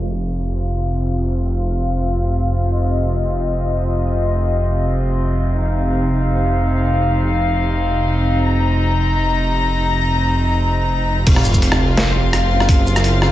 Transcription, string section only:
Already playing: C3 C4 F4 F5
2.75 D#5
5.59 D#4 F5
8.43 A#5
11.27 C3 C4 F4 F5

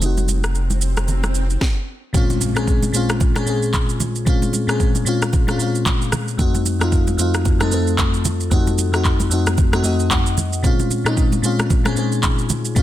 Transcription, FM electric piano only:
0.00 A3 C4 D#4
0.06 F#4
2.13 A#2 G#3 C4 C#4 F4
2.55 A#2 G#3 C4 C#4 G#4
2.92 A#2 G#3 C4 C#4 F4
3.34 A#2 G#3 C4 C#4 G#4
3.46 A#2 G#3 C4 C#4 G#4
4.25 A#2 G#3 C4 C#4 F4
4.67 A#2 G#3 C4 C#4 G#4
5.05 A#2 G#3 C4 C#4 F4
5.47 A#2 G#3 C4 C#4 F4
5.58 A#2 G#3 C4 C#4 F4
6.37 F2 A3 C4 D#4 F#4
6.79 F2 A3 C4 D#4 F4
7.17 F2 A3 C4 D#4 F4
7.59 F2 A3 C4 D#4 A4
7.70 F2 A3 C4 D#4 A4
8.50 F2 A3 C4 D#4 F#4
8.92 F2 A3 C4 D#4 F#4
9.30 F2 A3 C4 D#4 F#4
9.72 F2 A3 C4 D#4 F#4
9.83 F2 A3 C4 D#4 F#4 D#5
10.11 F#5
10.62 A#2 G#3 C4 C#4 F4
11.04 A#2 G#3 C4 C#4 D#4
11.42 A#2 G#3 C4 C#4 F4
11.84 A#2 G#3 C4 C#4 G#4
11.95 A#2 G#3 C4 C#4 G#4
12.75 A#2 G#3 C4 C#4 F4

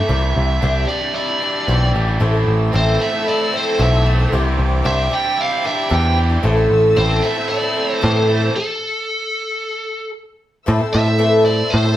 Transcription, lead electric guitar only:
Already playing: E5
0.88 D5
1.15 D5
2.76 C5
3.02 E5
3.28 D5
3.56 C5
3.82 E5
4.86 E5
5.13 G5
5.41 F5
5.66 E5
5.94 G5
6.97 C5
7.22 E5
7.49 D5
7.93 C5
8.03 C5
8.56 A4
10.93 E5
11.45 D5
11.70 C5

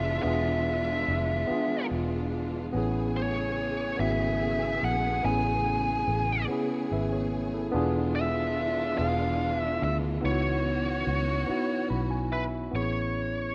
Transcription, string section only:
Already playing: E3 G#3 D4 F4
2.73 C#3 A3 B3 G#4
7.74 E3 G#3 D4 F4
10.24 B3 C#4 F#4

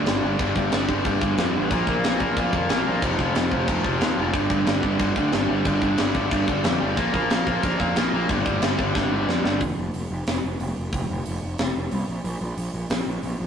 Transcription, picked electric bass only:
0.06 G1
0.22 G1
0.39 G1
0.56 G1
0.72 G1
0.89 G1
1.05 G1
1.22 G1
1.38 F2
1.55 A1
1.71 A#1
1.87 A#1
2.04 A#1
2.21 A#1
2.37 A#1
2.53 F2
2.70 A#1
2.88 A#1
3.02 F1
3.19 F1
3.35 F1
3.51 F1
3.68 F1
3.84 F1
4.00 D#2
4.17 F1
4.34 G1
4.50 G1
4.67 G1
4.83 G1
5.00 G1
5.16 D2
5.33 G1
5.49 G1
5.66 G1
5.82 G1
5.99 G1
6.15 G1
6.31 G1
6.48 G1
6.64 F2
6.81 G1
6.97 A#1
7.14 A#1
7.31 A#1
7.47 A#1
7.63 A#1
7.80 F2
7.96 A#1
8.12 A#1
8.29 G1
8.46 G1
8.61 G1
8.79 G1
8.95 G1
9.12 G1
9.28 F2
9.43 G1
9.61 F1
9.77 F1
9.94 F1
10.11 F1
10.27 F1
10.44 F1
10.60 F1
10.77 F1
10.93 F1
11.10 F1
11.26 F1
11.43 F1
11.59 F1
11.76 F1
11.92 C2
12.08 A#1
12.24 A#1
12.41 A#1
12.57 A#1
12.74 A#1
12.90 A#1
13.06 A#1
13.23 A#1
13.40 A#1

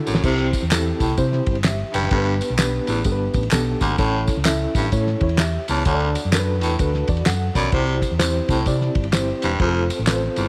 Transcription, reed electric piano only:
Already playing: D4 E4 F#4 A4
0.24 C4 E4 G4 C5
0.71 C4 E4 G4 A4
1.18 C4 E4 G4 C5
1.66 G4 E5
1.94 B4 G5
2.12 B3 D4 G4 A4
2.18 B4
2.59 B3 D4 G4 B4
3.06 B3 D4 G4 A4
3.12 B4
3.52 B3 D4 G4 A4
3.98 C#4 E4 A4 C#5
4.45 C#4 E4 A4 E5
4.92 C#4 E4 A4 C#5
5.23 E4 C#5
5.40 G4 E5
5.70 C#5 A5
5.87 D4 F#4 A4 C#5
5.94 D5
6.33 D4 F#4 A4 A#4
6.39 B4
6.80 D4 F#4 A4 B4
7.09 F#4 D5
7.27 A4 F#5
7.56 F#4 D5 B5
7.73 C4 E4 G4 C5
8.19 C4 E4 G4 C5
8.67 C4 E4 G4 D5
9.13 C4 E4 G4 C5
9.60 C4 F4 G#4 C5
9.66 A4
10.07 C4 F4 A4 B4
10.14 C5

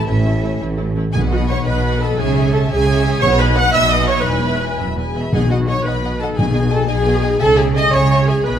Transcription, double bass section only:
0.07 A1
0.61 A1
1.14 B1
1.66 B1
2.18 C#2
2.71 C#2
3.23 B1
3.74 B1
4.26 E1
4.80 E1
5.31 B1
5.84 B1
6.37 B1
6.88 B1
7.40 C#2
7.93 C#2
8.47 B1

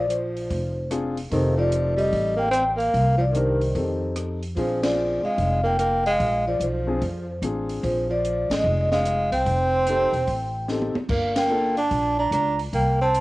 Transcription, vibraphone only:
0.10 C5
1.33 C5
1.59 D5
1.98 D#5
2.39 G5
2.53 G5
2.79 F5
3.20 D5
3.35 C5
4.57 C5
4.83 D5
5.25 F5
5.66 G5
5.81 G5
6.06 F5
6.48 D5
6.62 C5
7.84 C5
8.11 D5
8.51 D#5
8.92 F5
9.34 G5
11.10 F5
11.37 G5
11.79 A5
12.19 A#5
12.33 A#5
12.75 G5
13.02 A5

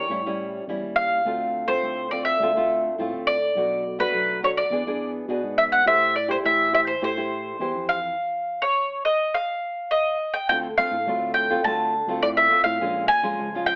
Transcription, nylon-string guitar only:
0.10 A2 G3 C#4 E4
0.26 G3 C#4 E4
0.69 G3 C#4 E4
1.25 D3 A3 C4 F4
1.67 A3 C4 F4
1.84 A2
2.11 A3 C4 F4
2.42 D3 A3 C4 F4
2.56 A3 C4 F4
2.98 A2 A3 C4 F4
3.56 B2 A3 D4 F#4
3.99 A3 D4 F#4
4.14 F#3
4.43 A3 D4 F#4
4.71 E3 B3 D4 G#4
4.87 B3 D4 G#4
5.29 B2 B3 D4 G#4
5.86 A3 E4 G4 C5
6.28 E4 G4 C5
6.43 E3
6.73 E4 G4 C5
7.02 A3 E4 G4 C5
7.17 E4 G4 C5
7.60 E3 E4 G4 C5
10.49 D3 A3 C4 F4
10.78 A3 C4 F4
11.07 A2 A3 C4 F4
11.50 A3 C4 F4
11.66 D3 A3 C4 F4
12.08 A3 C4 F4
12.24 A2
12.50 A3 C4 F4
12.81 A#2 G#3 C#4 F4
13.23 G#3 C#4 F4
13.39 F3
13.55 G#3 C#4 F4

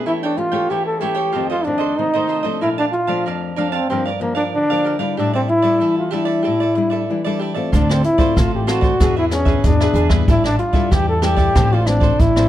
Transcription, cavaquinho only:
0.06 E4 A4 C#5 G5
0.23 A4 C#5 G5
0.38 muted cavaquinho stroke
0.52 A4 C#5 G5
0.70 E4 A4 C#5 G5
1.01 E4 A4 C#5 G5
1.15 A4 C#5 G5
1.32 F4 A4 C5 D#5
1.50 A4 C5 D#5
1.64 muted cavaquinho stroke
1.78 A4 C5 D#5
2.14 A4 C5 D#5
2.27 F4 A4 C5 D#5
2.43 A4 C5 D#5
2.61 A#4 D5 F5 A5
2.78 D5 F5 A5
2.93 muted cavaquinho stroke
3.07 D5 F5 A5
3.26 A#4 D5 F5 A5
3.56 A#4 D5 F5 A5
3.72 D5 F5 A5
3.90 G4 A#4 D5 F5
4.05 A#4 D5 F5
4.20 muted cavaquinho stroke
4.35 A#4 D5 F5
4.70 A#4 D5 F5
4.84 G4 A#4 D5 F5
4.99 A#4 D5 F5
5.17 G4 A4 D5 E5
5.33 A4 D5 E5
5.48 muted cavaquinho stroke
5.62 A4 D5 E5
5.80 G4 A4 D5 E5
6.11 G4 A4 D5 E5
6.25 A4 D5 E5
6.43 G4 A4 D5 E5
6.60 A4 D5 E5
6.75 muted cavaquinho stroke
6.90 A4 D5 E5
7.24 A4 D5 E5
7.39 G4 A4 D5 E5
7.54 A4 D5 E5
7.72 F4 A4 C5 D5
7.89 A4 C5 D5
8.03 muted cavaquinho stroke
8.18 A4 C5 D5
8.36 F4 A4 C5 D5
8.67 F4 A4 C5 D5
8.81 A4 C5 D5
9.00 D4 G#4 B4 E5
9.17 G#4 B4 E5
9.31 muted cavaquinho stroke
9.45 G#4 B4 E5
9.80 G#4 B4 E5
9.94 D4 G#4 B4 E5
10.09 G#4 B4 E5
10.28 G4 A4 D5 E5
10.44 A4 D5 E5
10.59 muted cavaquinho stroke
10.73 A4 D5 E5
10.91 G4 A4 D5 E5
11.22 G4 A4 D5 E5
11.36 A4 D5 E5
11.55 F4 A4 C5 D5
11.72 A4 C5 D5
11.87 muted cavaquinho stroke
12.00 A4 C5 D5
12.36 A4 C5 D5

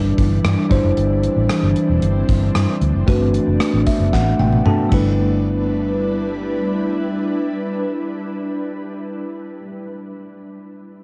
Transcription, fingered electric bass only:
Already playing: G1
0.18 G1
0.44 G2
0.71 G1
0.84 F#1
0.97 G1
1.36 A1
1.63 G1
1.89 E1
2.02 G1
2.29 G1
2.55 G2
2.81 D2
2.94 F#1
3.08 G1
3.47 F#1
3.74 A1
4.00 F#1
4.13 A1
4.39 A1
4.65 G2
4.92 G1

